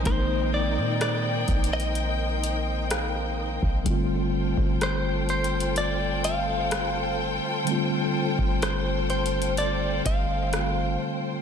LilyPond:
<<
  \new Staff \with { instrumentName = "Clean electric guitar" } { \time 4/4 \key g \minor \tempo 4 = 63 c''8 d''8 d''8. ees''4.~ ees''16 r8 | r4 c''8 c''8 d''8 f''4 r8 | r4 c''8 c''8 d''8 f''4 r8 | }
  \new Staff \with { instrumentName = "String section" } { \time 4/4 \key g \minor <ees' bes' c'' g''>1 | <f' a' c'' g''>1~ | <f' a' c'' g''>1 | }
  \new Staff \with { instrumentName = "Tine electric piano" } { \time 4/4 \key g \minor r2. f''4 | r1 | r1 | }
  \new Staff \with { instrumentName = "Tine electric piano" } { \time 4/4 \key g \minor <ees aes bes c' ees'>1 | <d g a c' f'>1 | <d g a c' f'>2. <d g a c' f'>4 | }
  \new Staff \with { instrumentName = "808-style bass" } { \clef bass \time 4/4 \key g \minor bes,,8. bes,8. bes,,2~ bes,,16 bes,,16 | g,,8. g,,2. r16 | r8. g,,4.~ g,,16 g,,4 r8 | }
  \new DrumStaff \with { instrumentName = "Drums" } \drummode { \time 4/4 <hh bd>4 \tuplet 3/2 { <hh ss>16 r16 r16 <hh bd>16 hh16 hh16 } hh8 hh8 <hh ss>8. bd16 | <hh bd>8. bd16 \tuplet 3/2 { <hh ss>16 r16 r16 hh16 hh16 hh16 } hh8 hh8 <hh ss>4 | hh8. bd16 \tuplet 3/2 { <hh ss>16 r16 r16 hh16 hh16 hh16 } hh8 <hh bd>8 <hh ss>4 | }
>>